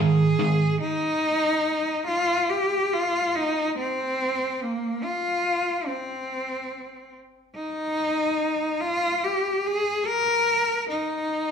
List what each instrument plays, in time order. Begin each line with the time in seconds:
Already playing: distorted electric guitar G#2 D#3, cello G#4
0.39 distorted electric guitar G#2 D#3
0.81 cello D#4
2.07 cello F4
2.50 cello G4
2.93 cello F4
3.35 cello D#4
3.78 cello C4
4.62 cello A#3
5.03 cello F4
5.87 cello C4
7.55 cello D#4
8.81 cello F4
9.24 cello G4
9.66 cello G#4
10.06 cello A#4
10.89 cello D#4